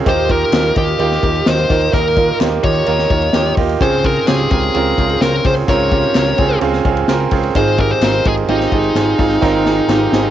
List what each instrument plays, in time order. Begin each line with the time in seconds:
0.05 analog synth bass D#2, grand piano A#2 A#3 D#4 F4 G4, lead electric guitar C5, kick, hi-hat pedal, ride
0.28 grand piano A#3 D#4 F4 A#4, lead electric guitar A#4, kick, ride
0.41 ride
0.52 analog synth bass D#2, grand piano A#3 D#4 F4 A#4, snare, clap, ride
0.64 ride
0.76 analog synth bass D#2, grand piano A#3 D#4 F4 G4, lead electric guitar G4, kick, ride
0.88 ride
0.99 analog synth bass D#2, grand piano A#3 D#4 F4 G4, ride
1.12 snare
1.22 analog synth bass D#2, grand piano A#3 D#4 F4 G4, kick, ride
1.35 ride
1.46 analog synth bass D#2, grand piano A#3 D#4 F4 G4, lead electric guitar C5, snare, clap, ride
1.58 ride
1.69 analog synth bass D#2, grand piano A#3 D#4 F4 A#4, kick, open hi-hat, ride
1.82 ride
1.92 analog synth bass D#2, grand piano A#2 A#3 D#4 F4 A#4, lead electric guitar A#4, kick, hi-hat pedal, ride
2.16 grand piano A#3 D#4 F4 A#4, kick, ride
2.29 ride
2.39 analog synth bass D#2, grand piano A#3 D#4 F4 G4, snare, clap, ride
2.52 ride
2.63 analog synth bass D#2, grand piano A#3 D#4 F4 G4, lead electric guitar C#5, kick, ride
2.75 ride
2.86 analog synth bass D#2, grand piano A#3 D#4 F4 A#4, ride
2.99 snare, ride
3.10 analog synth bass D#2, grand piano A#3 D#4 F4 A#4, kick, ride
3.22 ride
3.33 analog synth bass D#2, grand piano A#3 D#4 F4 G4, snare, clap, ride
3.45 ride
3.57 analog synth bass D#2, grand piano A#3 D#4 F4 G4, kick, open hi-hat, ride
3.69 ride
3.80 analog synth bass C#2, grand piano G#2 C4 C#4 F4 G#4, lead electric guitar C5, kick, hi-hat pedal, ride
3.92 ride
4.03 grand piano C4 C#4 F4 G#4, lead electric guitar A#4, kick, ride
4.16 ride
4.27 analog synth bass C#2, grand piano C4 C#4 F4 G4, lead electric guitar G#4, snare, clap, ride
4.39 ride
4.51 analog synth bass C#2, grand piano C4 C#4 F4 A#4, lead electric guitar G#4, kick, ride
4.63 ride
4.74 analog synth bass C#2, grand piano C4 C#4 F4 A#4, ride
4.98 analog synth bass C#2, grand piano C4 C#4 F4 A#4, kick, ride
5.09 ride
5.21 analog synth bass C#2, grand piano C4 C#4 F4 A#4, lead electric guitar A#4, snare, clap, ride
5.33 ride
5.44 analog synth bass C#2, grand piano C4 C#4 F4 G#4, lead electric guitar C5, kick, open hi-hat, ride
5.57 ride
5.68 analog synth bass C#2, grand piano G#2 C4 C#4 F4 A#4, lead electric guitar C#5, kick, hi-hat pedal, ride
5.80 ride
5.91 grand piano C4 C#4 F4 G4, kick, ride
6.04 ride
6.14 analog synth bass C#2, grand piano C4 C#4 F4 A#4, snare, clap, ride
6.26 ride
6.38 analog synth bass C#2, grand piano C4 C#4 F4 G#4, kick, ride
6.50 ride
6.61 analog synth bass C#2, grand piano C4 C#4 F4 G#4, ride
6.73 snare
6.84 analog synth bass C#2, grand piano C4 C#4 F4 G#4, kick, ride
6.97 ride
7.08 analog synth bass C#2, grand piano C4 C#4 F4 A#4, snare, clap, ride
7.20 ride
7.31 analog synth bass C#2, grand piano C4 C#4 F4 G#4, kick, open hi-hat, ride
7.43 ride
7.55 analog synth bass G#1, grand piano G#2 D#3 C4 D#4 F4 G#4, lead electric guitar C5, kick, hi-hat pedal, ride
7.78 grand piano C4 D#4 F4 G4, lead electric guitar A#4, kick, ride
7.91 lead electric guitar C5, ride
8.01 analog synth bass G#1, grand piano C4 D#4 F4 A#4, snare, clap, ride
8.14 ride
8.25 analog synth bass G#1, grand piano C4 D#4 F4 G#4, lead electric guitar G#4, kick, ride
8.37 ride
8.48 analog synth bass G#1, grand piano C4 D#4 F4 G4, lead electric guitar D#4, ride
8.61 snare
8.72 analog synth bass G#1, grand piano C4 D#4 F4 G#4, kick, ride
8.84 ride
8.95 analog synth bass G#1, grand piano C4 D#4 F4 G#4, snare, clap, ride
9.18 analog synth bass G#1, grand piano C4 D#4 F4 G#4, kick, open hi-hat, ride
9.31 ride
9.41 analog synth bass G#1, grand piano G#2 D#3 C4 D#4 F4 A#4, kick, snare
9.65 grand piano C4 D#4 F4 G#4, snare
9.88 analog synth bass G#1, grand piano C4 D#4 F4 G4, snare, clap
10.12 analog synth bass G#1, grand piano C4 D#4 F4 G#4, snare